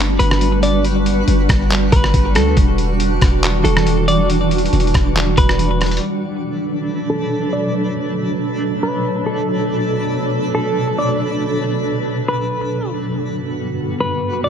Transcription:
Already playing: 808-style bass G1, ambient pad G3 D4 F#4 B4, synth texture G3 F#4 B4
0.19 808-style bass G1, clean electric guitar B4, closed hi-hat
0.31 cross-stick
0.41 closed hi-hat
0.63 clean electric guitar D5, closed hi-hat
0.84 closed hi-hat
1.06 closed hi-hat
1.28 808-style bass G1, closed hi-hat
1.49 808-style bass G1, kick, cross-stick, closed hi-hat
1.71 clap, closed hi-hat
1.92 808-style bass G1, clean electric guitar B4, kick, closed hi-hat
2.04 cross-stick
2.14 808-style bass G1, kick, closed hi-hat
2.35 808-style bass D2, clean electric guitar A4, cross-stick, closed hi-hat
2.57 808-style bass E1, ambient pad E3 G3 D4, synth texture D5, kick, closed hi-hat
2.78 closed hi-hat
3.00 closed hi-hat
3.21 808-style bass E1, kick, cross-stick, closed hi-hat
3.43 clap, closed hi-hat
3.64 808-style bass E1, clean electric guitar A4, closed hi-hat
3.77 cross-stick
3.87 closed hi-hat
4.08 clean electric guitar D5, closed hi-hat
4.30 closed hi-hat
4.51 closed hi-hat
4.58 closed hi-hat
4.66 closed hi-hat
4.73 808-style bass E1, closed hi-hat
4.80 closed hi-hat
4.87 closed hi-hat
4.94 808-style bass E1, kick, cross-stick, closed hi-hat
5.16 clap, closed hi-hat
5.37 808-style bass E1, clean electric guitar B4, kick, closed hi-hat
5.49 cross-stick
5.59 closed hi-hat
5.81 cross-stick, closed hi-hat
5.86 closed hi-hat
5.91 closed hi-hat
5.97 closed hi-hat
6.02 ambient pad B2 F#3 D4 A4, synth texture A3 D4 B4
7.10 clean electric guitar A4
7.53 clean electric guitar D5
8.83 clean electric guitar B4
9.26 clean electric guitar A4
10.55 clean electric guitar A4
10.98 clean electric guitar D5
12.28 clean electric guitar B4
12.93 ambient pad G2 D3 B3 F#4, synth texture G3 F#4
14.00 clean electric guitar B4
14.44 clean electric guitar D5

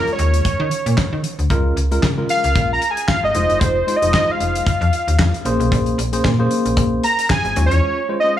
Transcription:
Already playing: tine electric piano G#3 C#4 F4 C#5
0.07 closed hi-hat
0.13 analog synth lead C#5
0.19 fm bass D#2, closed hi-hat
0.34 closed hi-hat
0.45 fm bass D#3, kick, closed hi-hat
0.60 fm bass D#3
0.71 closed hi-hat
0.86 fm bass A#2, closed hi-hat
0.98 kick, snare, clap
1.13 fm bass D#3
1.24 closed hi-hat
1.39 fm bass D2, closed hi-hat
1.50 fm bass C#2, tine electric piano G#3 C#4 F4 A#4, kick, closed hi-hat
1.77 fm bass C#2, closed hi-hat
1.91 tine electric piano G#3 C#4 F4 A#4, closed hi-hat
2.03 fm bass C#3, kick, snare, clap
2.17 tine electric piano G#3 C#4 F4 A#4
2.29 analog synth lead F5, closed hi-hat
2.44 fm bass C#2, closed hi-hat
2.55 fm bass A#1, kick, closed hi-hat
2.73 analog synth lead A#5
2.82 closed hi-hat
2.91 analog synth lead G#5
2.97 closed hi-hat
3.08 analog synth lead F5, kick, snare, clap
3.23 fm bass G#1, analog synth lead D#5
3.35 fm bass F1, tine electric piano G#3 D#4 F4 C5, closed hi-hat
3.42 analog synth lead D#5
3.49 fm bass F#1, closed hi-hat
3.59 fm bass F1, analog synth lead C5, kick, closed hi-hat
3.87 tine electric piano G#3 D#4 F4 C5, closed hi-hat
3.96 analog synth lead D#5
4.02 fm bass F1, tine electric piano G#3 D#4 F4 C5, closed hi-hat
4.14 analog synth lead D#5, kick, snare, clap
4.31 analog synth lead F5
4.40 fm bass F1, closed hi-hat
4.55 closed hi-hat
4.66 fm bass F2, kick, closed hi-hat
4.81 fm bass F2, closed hi-hat
4.93 closed hi-hat
5.08 fm bass D#2, closed hi-hat
5.19 fm bass F2, kick, snare, clap
5.34 closed hi-hat
5.45 fm bass A#1, tine electric piano A#3 C#4 G#4 C5, closed hi-hat
5.60 fm bass B1, closed hi-hat
5.72 fm bass A#1, kick, closed hi-hat
5.86 closed hi-hat
5.98 fm bass A#1, closed hi-hat
6.13 tine electric piano A#3 C#4 G#4 C5, closed hi-hat
6.25 fm bass A#2, kick, snare, clap
6.39 tine electric piano A#3 C#4 G#4 C5
6.51 closed hi-hat
6.66 fm bass A#1, closed hi-hat
6.77 fm bass A#1, kick, closed hi-hat
7.04 analog synth lead A#5, closed hi-hat
7.19 closed hi-hat
7.30 analog synth lead G#5, kick, snare, clap
7.45 fm bass G#1, closed hi-hat
7.56 fm bass D#2, tine electric piano G#3 C#4 F4 C#5, closed hi-hat
7.66 analog synth lead C#5
7.71 fm bass E2, closed hi-hat
8.09 tine electric piano G#3 C#4 F4 C5
8.20 tine electric piano G#3, analog synth lead D#5
8.24 tine electric piano C#4 F4 C5

